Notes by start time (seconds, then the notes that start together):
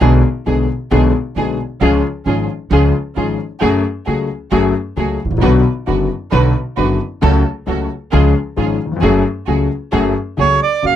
0.01 B1 B2 D3 G#3 B3 D4 G#4
0.46 B1 B2 D3 G#3 B3 D4 G#4
0.91 B1 B2 D3 G#3 B3 D4 G#4
1.36 B1 B2 D3 G#3 B3 D4 G#4
1.81 C#2 C#3 F3 G#3 C#4 F4 G#4
2.26 G#1 G#2 F3 G#3 C#4 F4 G#4
2.71 C#2 C#3 F3 G#3 C#4 F4 G#4
3.16 G#1 G#2 F3 G#3 C#4 F4 G#4
3.61 F#1 F#2 F#3 A3 C#4 F#4 G#4
4.06 C#2 C#3 F#3 A3 C#4 F#4 G#4
4.51 F#1 F#2 F#3 A3 C#4 F#4 G#4
4.96 C#2 C#3 F#3 A3 C#4 F#4 G#4
5.25 G#1
5.31 A1
5.37 A#1
5.41 B1 B2 D3 F#3 B3 D4 F#4 B4
5.87 F#1 F#2 D3 F#3 B3 D4 F#4 B4
6.32 B1 B2 D3 F#3 B3 D4 F#4 B4
6.77 F#1 F#2 D3 F#3 B3 D4 F#4 B4
7.22 C#2 C#3 F#3 A3 C#4 F#4 A4
7.67 C#2 C#3 F#3 A3 C#4 F#4 A4
8.12 C#2 C#3 F3 G#3 C#4 F4 G#4
8.56 G#1 G#2 F3 G#3 C#4 F4 G#4
8.86 D#2
8.92 E2
8.96 F2
9.02 F#1 F#2 F#3 A3 C#4 F#4 G#4
9.47 C#2 C#3 F#3 A3 C#4 F#4 G#4
9.92 F#1 F#2 F#3 A3 C#4 F#4 G#4
10.37 C#2 C#3 F#3 A3 C#4 F#4 G#4 C#5
10.63 D5
10.83 F#1 F#2 C#3 F#3 A#3 F#4 F5